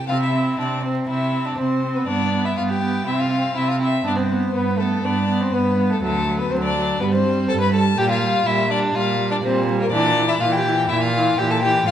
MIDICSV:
0, 0, Header, 1, 5, 480
1, 0, Start_track
1, 0, Tempo, 494234
1, 95, Time_signature, 4, 2, 24, 8
1, 5855, Tempo, 487409
1, 11647, End_track
2, 0, Start_track
2, 0, Title_t, "Violin"
2, 0, Program_c, 0, 40
2, 91, Note_on_c, 0, 77, 67
2, 211, Note_off_c, 0, 77, 0
2, 221, Note_on_c, 0, 76, 49
2, 572, Note_off_c, 0, 76, 0
2, 578, Note_on_c, 0, 74, 46
2, 814, Note_off_c, 0, 74, 0
2, 824, Note_on_c, 0, 72, 43
2, 902, Note_off_c, 0, 72, 0
2, 1054, Note_on_c, 0, 76, 48
2, 1428, Note_on_c, 0, 74, 49
2, 1443, Note_off_c, 0, 76, 0
2, 1529, Note_off_c, 0, 74, 0
2, 1535, Note_on_c, 0, 72, 51
2, 1904, Note_on_c, 0, 71, 47
2, 1918, Note_off_c, 0, 72, 0
2, 2006, Note_off_c, 0, 71, 0
2, 2012, Note_on_c, 0, 74, 58
2, 2385, Note_on_c, 0, 76, 45
2, 2399, Note_off_c, 0, 74, 0
2, 2492, Note_off_c, 0, 76, 0
2, 2498, Note_on_c, 0, 77, 55
2, 2547, Note_off_c, 0, 77, 0
2, 2622, Note_on_c, 0, 79, 56
2, 2982, Note_on_c, 0, 76, 58
2, 2997, Note_off_c, 0, 79, 0
2, 3110, Note_on_c, 0, 77, 58
2, 3125, Note_off_c, 0, 76, 0
2, 3471, Note_on_c, 0, 76, 59
2, 3486, Note_off_c, 0, 77, 0
2, 3589, Note_off_c, 0, 76, 0
2, 3603, Note_on_c, 0, 77, 50
2, 3648, Note_off_c, 0, 77, 0
2, 3724, Note_on_c, 0, 76, 58
2, 3951, Note_off_c, 0, 76, 0
2, 3956, Note_on_c, 0, 74, 64
2, 4002, Note_off_c, 0, 74, 0
2, 4067, Note_on_c, 0, 72, 48
2, 4430, Note_on_c, 0, 71, 55
2, 4445, Note_off_c, 0, 72, 0
2, 4659, Note_on_c, 0, 69, 50
2, 4674, Note_off_c, 0, 71, 0
2, 4901, Note_on_c, 0, 74, 54
2, 4915, Note_off_c, 0, 69, 0
2, 5268, Note_on_c, 0, 72, 58
2, 5283, Note_off_c, 0, 74, 0
2, 5384, Note_on_c, 0, 71, 60
2, 5398, Note_off_c, 0, 72, 0
2, 5755, Note_on_c, 0, 69, 53
2, 5770, Note_off_c, 0, 71, 0
2, 5847, Note_off_c, 0, 69, 0
2, 5852, Note_on_c, 0, 69, 74
2, 6207, Note_off_c, 0, 69, 0
2, 6217, Note_on_c, 0, 71, 56
2, 6335, Note_on_c, 0, 72, 62
2, 6349, Note_off_c, 0, 71, 0
2, 6448, Note_off_c, 0, 72, 0
2, 6454, Note_on_c, 0, 74, 68
2, 6811, Note_off_c, 0, 74, 0
2, 6828, Note_on_c, 0, 71, 58
2, 6874, Note_off_c, 0, 71, 0
2, 6939, Note_on_c, 0, 72, 67
2, 7289, Note_off_c, 0, 72, 0
2, 7298, Note_on_c, 0, 81, 79
2, 7345, Note_off_c, 0, 81, 0
2, 7423, Note_on_c, 0, 83, 56
2, 7537, Note_off_c, 0, 83, 0
2, 7543, Note_on_c, 0, 81, 75
2, 7774, Note_on_c, 0, 79, 93
2, 7789, Note_off_c, 0, 81, 0
2, 7895, Note_off_c, 0, 79, 0
2, 7905, Note_on_c, 0, 77, 66
2, 8254, Note_on_c, 0, 76, 71
2, 8269, Note_off_c, 0, 77, 0
2, 8487, Note_off_c, 0, 76, 0
2, 8493, Note_on_c, 0, 74, 71
2, 8571, Note_off_c, 0, 74, 0
2, 8732, Note_on_c, 0, 77, 72
2, 9081, Note_off_c, 0, 77, 0
2, 9087, Note_on_c, 0, 74, 72
2, 9135, Note_off_c, 0, 74, 0
2, 9205, Note_on_c, 0, 72, 69
2, 9557, Note_off_c, 0, 72, 0
2, 9577, Note_on_c, 0, 70, 72
2, 9679, Note_off_c, 0, 70, 0
2, 9685, Note_on_c, 0, 74, 95
2, 10045, Note_on_c, 0, 76, 73
2, 10060, Note_off_c, 0, 74, 0
2, 10161, Note_on_c, 0, 77, 80
2, 10175, Note_off_c, 0, 76, 0
2, 10275, Note_on_c, 0, 79, 73
2, 10290, Note_off_c, 0, 77, 0
2, 10641, Note_on_c, 0, 76, 77
2, 10655, Note_off_c, 0, 79, 0
2, 10761, Note_on_c, 0, 77, 75
2, 10776, Note_off_c, 0, 76, 0
2, 11121, Note_on_c, 0, 79, 76
2, 11136, Note_off_c, 0, 77, 0
2, 11252, Note_on_c, 0, 81, 75
2, 11267, Note_off_c, 0, 79, 0
2, 11356, Note_off_c, 0, 81, 0
2, 11362, Note_on_c, 0, 79, 79
2, 11603, Note_off_c, 0, 79, 0
2, 11607, Note_on_c, 0, 77, 96
2, 11647, Note_off_c, 0, 77, 0
2, 11647, End_track
3, 0, Start_track
3, 0, Title_t, "Violin"
3, 0, Program_c, 1, 40
3, 89, Note_on_c, 1, 65, 49
3, 138, Note_off_c, 1, 65, 0
3, 215, Note_on_c, 1, 64, 44
3, 568, Note_on_c, 1, 62, 38
3, 583, Note_off_c, 1, 64, 0
3, 813, Note_on_c, 1, 60, 41
3, 827, Note_off_c, 1, 62, 0
3, 1048, Note_off_c, 1, 60, 0
3, 1054, Note_on_c, 1, 64, 45
3, 1413, Note_on_c, 1, 62, 41
3, 1427, Note_off_c, 1, 64, 0
3, 1533, Note_on_c, 1, 60, 44
3, 1548, Note_off_c, 1, 62, 0
3, 1895, Note_off_c, 1, 60, 0
3, 1900, Note_on_c, 1, 59, 35
3, 2004, Note_off_c, 1, 59, 0
3, 2010, Note_on_c, 1, 62, 52
3, 2375, Note_on_c, 1, 64, 46
3, 2390, Note_off_c, 1, 62, 0
3, 2494, Note_on_c, 1, 65, 41
3, 2509, Note_off_c, 1, 64, 0
3, 2617, Note_on_c, 1, 67, 49
3, 2632, Note_off_c, 1, 65, 0
3, 2968, Note_off_c, 1, 67, 0
3, 2974, Note_on_c, 1, 64, 44
3, 3093, Note_on_c, 1, 65, 51
3, 3107, Note_off_c, 1, 64, 0
3, 3444, Note_off_c, 1, 65, 0
3, 3450, Note_on_c, 1, 64, 42
3, 3574, Note_on_c, 1, 65, 43
3, 3589, Note_off_c, 1, 64, 0
3, 3685, Note_off_c, 1, 65, 0
3, 3691, Note_on_c, 1, 64, 44
3, 3768, Note_off_c, 1, 64, 0
3, 3927, Note_on_c, 1, 62, 50
3, 4045, Note_on_c, 1, 60, 53
3, 4060, Note_off_c, 1, 62, 0
3, 4399, Note_off_c, 1, 60, 0
3, 4405, Note_on_c, 1, 59, 46
3, 4636, Note_on_c, 1, 57, 43
3, 4651, Note_off_c, 1, 59, 0
3, 4875, Note_off_c, 1, 57, 0
3, 4881, Note_on_c, 1, 62, 46
3, 5252, Note_on_c, 1, 60, 42
3, 5266, Note_off_c, 1, 62, 0
3, 5363, Note_on_c, 1, 59, 48
3, 5378, Note_off_c, 1, 60, 0
3, 5726, Note_on_c, 1, 57, 45
3, 5740, Note_off_c, 1, 59, 0
3, 5834, Note_off_c, 1, 57, 0
3, 5839, Note_on_c, 1, 57, 53
3, 6207, Note_on_c, 1, 59, 47
3, 6222, Note_off_c, 1, 57, 0
3, 6310, Note_off_c, 1, 59, 0
3, 6316, Note_on_c, 1, 60, 55
3, 6368, Note_off_c, 1, 60, 0
3, 6437, Note_on_c, 1, 62, 57
3, 6811, Note_on_c, 1, 59, 51
3, 6826, Note_off_c, 1, 62, 0
3, 6928, Note_on_c, 1, 60, 56
3, 6942, Note_off_c, 1, 59, 0
3, 7292, Note_on_c, 1, 69, 62
3, 7306, Note_off_c, 1, 60, 0
3, 7402, Note_off_c, 1, 69, 0
3, 7407, Note_on_c, 1, 71, 48
3, 7523, Note_off_c, 1, 71, 0
3, 7529, Note_on_c, 1, 69, 55
3, 7608, Note_off_c, 1, 69, 0
3, 7772, Note_on_c, 1, 67, 70
3, 7889, Note_off_c, 1, 67, 0
3, 7895, Note_on_c, 1, 65, 67
3, 8251, Note_on_c, 1, 64, 61
3, 8265, Note_off_c, 1, 65, 0
3, 8486, Note_off_c, 1, 64, 0
3, 8492, Note_on_c, 1, 62, 65
3, 8733, Note_on_c, 1, 65, 66
3, 8748, Note_off_c, 1, 62, 0
3, 9081, Note_off_c, 1, 65, 0
3, 9087, Note_on_c, 1, 62, 51
3, 9136, Note_off_c, 1, 62, 0
3, 9202, Note_on_c, 1, 60, 51
3, 9553, Note_off_c, 1, 60, 0
3, 9559, Note_on_c, 1, 58, 56
3, 9609, Note_off_c, 1, 58, 0
3, 9684, Note_on_c, 1, 62, 67
3, 10037, Note_off_c, 1, 62, 0
3, 10042, Note_on_c, 1, 64, 54
3, 10154, Note_off_c, 1, 64, 0
3, 10160, Note_on_c, 1, 65, 63
3, 10210, Note_off_c, 1, 65, 0
3, 10286, Note_on_c, 1, 67, 63
3, 10634, Note_off_c, 1, 67, 0
3, 10640, Note_on_c, 1, 64, 69
3, 10763, Note_off_c, 1, 64, 0
3, 10769, Note_on_c, 1, 65, 69
3, 11130, Note_on_c, 1, 67, 67
3, 11145, Note_off_c, 1, 65, 0
3, 11247, Note_on_c, 1, 69, 58
3, 11262, Note_off_c, 1, 67, 0
3, 11359, Note_off_c, 1, 69, 0
3, 11364, Note_on_c, 1, 67, 63
3, 11605, Note_off_c, 1, 67, 0
3, 11616, Note_on_c, 1, 65, 76
3, 11647, Note_off_c, 1, 65, 0
3, 11647, End_track
4, 0, Start_track
4, 0, Title_t, "Viola"
4, 0, Program_c, 2, 41
4, 95, Note_on_c, 2, 60, 40
4, 332, Note_off_c, 2, 60, 0
4, 340, Note_on_c, 2, 60, 32
4, 576, Note_off_c, 2, 60, 0
4, 581, Note_on_c, 2, 60, 35
4, 808, Note_off_c, 2, 60, 0
4, 814, Note_on_c, 2, 60, 35
4, 1053, Note_off_c, 2, 60, 0
4, 1066, Note_on_c, 2, 60, 30
4, 1295, Note_off_c, 2, 60, 0
4, 1301, Note_on_c, 2, 60, 31
4, 1536, Note_off_c, 2, 60, 0
4, 1552, Note_on_c, 2, 60, 35
4, 1783, Note_off_c, 2, 60, 0
4, 1797, Note_on_c, 2, 60, 30
4, 2022, Note_off_c, 2, 60, 0
4, 2028, Note_on_c, 2, 59, 36
4, 2261, Note_off_c, 2, 59, 0
4, 2273, Note_on_c, 2, 59, 33
4, 2500, Note_off_c, 2, 59, 0
4, 2506, Note_on_c, 2, 59, 39
4, 2740, Note_off_c, 2, 59, 0
4, 2748, Note_on_c, 2, 59, 35
4, 2974, Note_off_c, 2, 59, 0
4, 2980, Note_on_c, 2, 60, 34
4, 3211, Note_off_c, 2, 60, 0
4, 3217, Note_on_c, 2, 60, 33
4, 3457, Note_off_c, 2, 60, 0
4, 3467, Note_on_c, 2, 60, 39
4, 3696, Note_off_c, 2, 60, 0
4, 3702, Note_on_c, 2, 60, 38
4, 3940, Note_off_c, 2, 60, 0
4, 3945, Note_on_c, 2, 59, 43
4, 4180, Note_off_c, 2, 59, 0
4, 4188, Note_on_c, 2, 59, 33
4, 4420, Note_off_c, 2, 59, 0
4, 4427, Note_on_c, 2, 59, 42
4, 4655, Note_off_c, 2, 59, 0
4, 4661, Note_on_c, 2, 59, 37
4, 4894, Note_off_c, 2, 59, 0
4, 4906, Note_on_c, 2, 59, 37
4, 5134, Note_off_c, 2, 59, 0
4, 5140, Note_on_c, 2, 59, 38
4, 5373, Note_off_c, 2, 59, 0
4, 5378, Note_on_c, 2, 59, 36
4, 5603, Note_off_c, 2, 59, 0
4, 5609, Note_on_c, 2, 59, 39
4, 5841, Note_off_c, 2, 59, 0
4, 5847, Note_on_c, 2, 54, 50
4, 6087, Note_off_c, 2, 54, 0
4, 6091, Note_on_c, 2, 54, 37
4, 6327, Note_off_c, 2, 54, 0
4, 6333, Note_on_c, 2, 54, 49
4, 6572, Note_off_c, 2, 54, 0
4, 6580, Note_on_c, 2, 54, 44
4, 6816, Note_off_c, 2, 54, 0
4, 6822, Note_on_c, 2, 55, 44
4, 7051, Note_off_c, 2, 55, 0
4, 7057, Note_on_c, 2, 55, 39
4, 7290, Note_off_c, 2, 55, 0
4, 7299, Note_on_c, 2, 55, 48
4, 7532, Note_off_c, 2, 55, 0
4, 7537, Note_on_c, 2, 55, 43
4, 7770, Note_off_c, 2, 55, 0
4, 7776, Note_on_c, 2, 55, 55
4, 8011, Note_off_c, 2, 55, 0
4, 8021, Note_on_c, 2, 55, 43
4, 8249, Note_off_c, 2, 55, 0
4, 8255, Note_on_c, 2, 55, 54
4, 8482, Note_off_c, 2, 55, 0
4, 8488, Note_on_c, 2, 55, 48
4, 8727, Note_off_c, 2, 55, 0
4, 8735, Note_on_c, 2, 55, 49
4, 8969, Note_off_c, 2, 55, 0
4, 8977, Note_on_c, 2, 55, 43
4, 9209, Note_off_c, 2, 55, 0
4, 9222, Note_on_c, 2, 55, 52
4, 9449, Note_off_c, 2, 55, 0
4, 9458, Note_on_c, 2, 55, 53
4, 9687, Note_off_c, 2, 55, 0
4, 9696, Note_on_c, 2, 52, 56
4, 9927, Note_off_c, 2, 52, 0
4, 9933, Note_on_c, 2, 52, 48
4, 10167, Note_off_c, 2, 52, 0
4, 10175, Note_on_c, 2, 52, 56
4, 10406, Note_off_c, 2, 52, 0
4, 10412, Note_on_c, 2, 52, 51
4, 10646, Note_off_c, 2, 52, 0
4, 10659, Note_on_c, 2, 52, 46
4, 10887, Note_off_c, 2, 52, 0
4, 10893, Note_on_c, 2, 52, 52
4, 11128, Note_off_c, 2, 52, 0
4, 11140, Note_on_c, 2, 52, 50
4, 11368, Note_off_c, 2, 52, 0
4, 11374, Note_on_c, 2, 52, 52
4, 11606, Note_off_c, 2, 52, 0
4, 11611, Note_on_c, 2, 53, 55
4, 11647, Note_off_c, 2, 53, 0
4, 11647, End_track
5, 0, Start_track
5, 0, Title_t, "Cello"
5, 0, Program_c, 3, 42
5, 85, Note_on_c, 3, 48, 49
5, 516, Note_off_c, 3, 48, 0
5, 574, Note_on_c, 3, 48, 36
5, 1001, Note_off_c, 3, 48, 0
5, 1055, Note_on_c, 3, 48, 44
5, 1482, Note_off_c, 3, 48, 0
5, 1542, Note_on_c, 3, 48, 40
5, 1967, Note_off_c, 3, 48, 0
5, 2020, Note_on_c, 3, 43, 49
5, 2445, Note_off_c, 3, 43, 0
5, 2504, Note_on_c, 3, 43, 36
5, 2927, Note_off_c, 3, 43, 0
5, 2979, Note_on_c, 3, 48, 46
5, 3407, Note_off_c, 3, 48, 0
5, 3465, Note_on_c, 3, 48, 43
5, 3890, Note_off_c, 3, 48, 0
5, 3947, Note_on_c, 3, 43, 49
5, 4368, Note_off_c, 3, 43, 0
5, 4424, Note_on_c, 3, 43, 44
5, 4843, Note_off_c, 3, 43, 0
5, 4903, Note_on_c, 3, 43, 49
5, 5322, Note_off_c, 3, 43, 0
5, 5372, Note_on_c, 3, 43, 56
5, 5796, Note_off_c, 3, 43, 0
5, 5854, Note_on_c, 3, 38, 53
5, 6279, Note_off_c, 3, 38, 0
5, 6336, Note_on_c, 3, 38, 47
5, 6763, Note_off_c, 3, 38, 0
5, 6822, Note_on_c, 3, 43, 56
5, 7241, Note_off_c, 3, 43, 0
5, 7302, Note_on_c, 3, 43, 62
5, 7722, Note_off_c, 3, 43, 0
5, 7781, Note_on_c, 3, 46, 64
5, 8201, Note_off_c, 3, 46, 0
5, 8250, Note_on_c, 3, 46, 48
5, 8676, Note_off_c, 3, 46, 0
5, 8732, Note_on_c, 3, 46, 64
5, 9154, Note_off_c, 3, 46, 0
5, 9212, Note_on_c, 3, 46, 61
5, 9631, Note_off_c, 3, 46, 0
5, 9690, Note_on_c, 3, 46, 72
5, 10114, Note_off_c, 3, 46, 0
5, 10167, Note_on_c, 3, 46, 60
5, 10592, Note_off_c, 3, 46, 0
5, 10654, Note_on_c, 3, 46, 68
5, 11077, Note_off_c, 3, 46, 0
5, 11133, Note_on_c, 3, 46, 64
5, 11558, Note_off_c, 3, 46, 0
5, 11610, Note_on_c, 3, 45, 60
5, 11647, Note_off_c, 3, 45, 0
5, 11647, End_track
0, 0, End_of_file